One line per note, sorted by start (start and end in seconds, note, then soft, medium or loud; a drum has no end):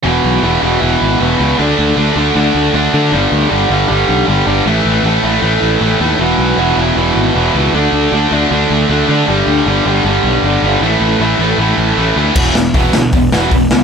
0.04 0.18 E1 medium
0.04 0.41 E2 medium
0.04 0.42 B2 medium
0.04 0.42 E3 medium
0.24 0.38 B1 medium
0.42 0.57 E1 medium
0.42 0.60 E2 medium
0.42 0.61 B2 medium
0.42 0.62 E3 medium
0.62 0.76 E1 medium
0.62 0.79 E2 medium
0.62 0.80 B2 medium
0.62 0.80 E3 medium
0.80 0.95 E1 medium
0.80 1.19 E2 medium
0.80 1.19 B2 medium
0.80 1.20 E3 loud
1.02 1.15 G#1 medium
1.20 1.34 E1 medium
1.20 1.37 E2 medium
1.20 1.38 B2 medium
1.20 1.38 E3 medium
1.38 1.53 C#2 medium
1.38 1.57 E2 medium
1.38 1.57 B2 medium
1.38 1.57 E3 medium
1.58 1.72 D2 medium
1.58 1.95 D3 medium
1.58 1.96 A3 loud
1.58 1.97 D4 loud
1.79 1.92 D2 medium
1.97 2.10 D2 medium
1.97 2.15 D3 medium
1.97 2.16 A3 medium
1.97 2.17 D4 medium
2.16 2.29 D2 medium
2.16 2.34 D3 medium
2.16 2.35 A3 medium
2.16 2.35 D4 medium
2.35 2.49 D2 medium
2.35 2.73 D3 loud
2.35 2.73 A3 medium
2.35 2.74 D4 loud
2.55 2.68 D2 medium
2.74 2.87 D2 medium
2.74 2.91 D3 medium
2.74 2.92 A3 medium
2.74 2.93 D4 medium
2.93 3.11 D3 medium
2.93 3.14 D3 medium
2.93 3.11 A3 medium
2.93 3.12 D4 medium
3.11 3.26 G1 medium
3.11 3.49 G2 medium
3.11 3.49 D3 loud
3.11 3.50 G3 loud
3.32 3.45 D2 medium
3.50 3.65 G1 medium
3.50 3.68 G2 medium
3.50 3.69 D3 medium
3.50 3.70 G3 medium
3.70 3.83 G1 medium
3.70 3.87 G2 medium
3.70 3.88 D3 medium
3.70 3.88 G3 medium
3.88 4.03 G1 medium
3.88 4.25 G2 medium
3.88 4.26 D3 medium
3.88 4.27 G3 loud
4.09 4.22 B1 medium
4.27 4.41 G1 medium
4.27 4.45 G2 medium
4.27 4.46 D3 medium
4.27 4.46 G3 medium
4.46 4.60 G1 medium
4.46 4.65 G2 medium
4.46 4.65 D3 medium
4.46 4.65 G3 loud
4.66 4.79 A1 medium
4.66 5.03 A2 medium
4.66 5.04 E3 medium
4.66 5.04 A3 loud
4.85 4.99 A1 medium
5.04 5.17 A1 medium
5.04 5.21 A2 medium
5.04 5.23 E3 medium
5.04 5.23 A3 medium
5.23 5.37 A1 medium
5.23 5.40 A2 medium
5.23 5.41 E3 medium
5.23 5.42 A3 medium
5.41 5.56 A1 medium
5.41 5.80 A2 medium
5.41 5.81 E3 medium
5.41 5.81 A3 loud
5.62 5.75 A1 medium
5.81 5.95 A1 medium
5.81 5.99 A2 medium
5.81 5.99 E3 medium
5.81 6.00 A3 medium
6.00 6.14 D#2 medium
6.00 6.18 A2 medium
6.00 6.18 E3 medium
6.00 6.19 A3 loud
6.18 6.33 E1 medium
6.18 6.57 E2 medium
6.18 6.57 B2 medium
6.18 6.58 E3 medium
6.39 6.52 B1 medium
6.58 6.71 E1 medium
6.58 6.76 E2 medium
6.58 6.77 B2 medium
6.58 6.78 E3 medium
6.77 6.91 E1 medium
6.77 6.95 E2 medium
6.77 6.96 B2 medium
6.77 6.97 E3 medium
6.96 7.10 E1 medium
6.96 7.33 E2 medium
6.96 7.34 B2 medium
6.96 7.35 E3 loud
7.16 7.29 G#1 medium
7.35 7.49 E1 medium
7.35 7.54 E2 medium
7.35 7.54 B2 medium
7.35 7.55 E3 medium
7.55 7.68 C#2 medium
7.55 7.73 E2 medium
7.55 7.73 B2 medium
7.55 7.74 E3 loud
7.73 7.87 D2 medium
7.73 8.11 D3 medium
7.73 8.12 A3 loud
7.73 8.13 D4 loud
7.93 8.06 D2 medium
8.12 8.26 D2 medium
8.12 8.30 D3 medium
8.12 8.31 A3 medium
8.12 8.33 D4 medium
8.31 8.45 D2 medium
8.31 8.49 D3 medium
8.31 8.50 A3 medium
8.31 8.51 D4 medium
8.51 8.64 D2 medium
8.51 8.88 D3 loud
8.51 8.89 A3 loud
8.51 8.89 D4 medium
8.70 8.84 D2 medium
8.89 9.03 D2 medium
8.89 9.07 D3 medium
8.89 9.08 A3 medium
8.89 9.08 D4 medium
9.08 9.27 D3 medium
9.08 9.22 D3 medium
9.08 9.27 A3 medium
9.08 9.27 D4 medium
9.27 9.42 G1 medium
9.27 9.65 G2 medium
9.27 9.66 D3 medium
9.27 9.67 G3 loud
9.47 9.60 D2 medium
9.66 9.80 G1 medium
9.66 9.85 G2 medium
9.66 9.86 D3 medium
9.66 9.86 G3 medium
9.86 9.99 G1 medium
9.86 10.04 G2 medium
9.86 10.05 D3 medium
9.86 10.05 G3 medium
10.05 10.18 G1 medium
10.05 10.43 G2 loud
10.05 10.43 D3 loud
10.05 10.44 G3 loud
10.24 10.37 B1 medium
10.43 10.56 G1 medium
10.43 10.62 G2 medium
10.43 10.63 D3 medium
10.43 10.64 G3 medium
10.62 10.76 G1 medium
10.62 10.81 G2 medium
10.62 10.81 D3 medium
10.62 10.82 G3 medium
10.81 10.95 A1 medium
10.81 11.19 A2 medium
10.81 11.20 E3 loud
10.81 11.20 A3 loud
11.01 11.14 A1 medium
11.20 11.33 A1 medium
11.20 11.38 A2 medium
11.20 11.39 E3 medium
11.20 11.40 A3 medium
11.39 11.53 A1 medium
11.39 11.57 A2 medium
11.39 11.57 E3 medium
11.39 11.58 A3 medium
11.58 11.72 A1 medium
11.58 11.96 A2 medium
11.58 11.97 E3 loud
11.58 11.97 A3 medium
11.78 11.91 A1 medium
11.97 12.11 A1 medium
11.97 12.15 A2 medium
11.97 12.15 E3 medium
11.97 12.16 A3 medium
12.16 12.30 D2 medium
12.16 12.35 A2 medium
12.16 12.35 E3 medium
12.16 12.35 A3 medium
12.35 12.50 E1 medium
12.35 12.53 E2 medium
12.35 12.54 B2 medium
12.35 12.54 E3 medium
12.35 kick loud
12.35 crash loud
12.55 12.70 E1 medium
12.55 12.72 E2 medium
12.55 12.73 B2 medium
12.55 snare loud
12.74 12.89 E1 medium
12.74 12.92 E2 medium
12.74 12.93 B2 medium
12.74 12.93 E3 loud
12.74 kick loud
12.74 open hi-hat soft
12.93 13.08 D2 medium
12.93 13.11 E2 medium
12.93 13.11 B2 medium
12.93 snare loud
13.13 13.28 E1 medium
13.13 13.31 E2 medium
13.13 13.31 B2 medium
13.13 kick loud
13.13 open hi-hat medium
13.32 13.47 E1 medium
13.32 13.51 E2 medium
13.32 13.51 B2 medium
13.32 13.51 E3 medium
13.32 snare medium
13.51 13.66 E1 medium
13.51 13.70 E2 medium
13.51 13.70 B2 medium
13.51 kick loud
13.51 open hi-hat medium
13.71 13.84 C#2 medium
13.71 13.84 E2 medium
13.71 13.84 B2 medium
13.71 snare loud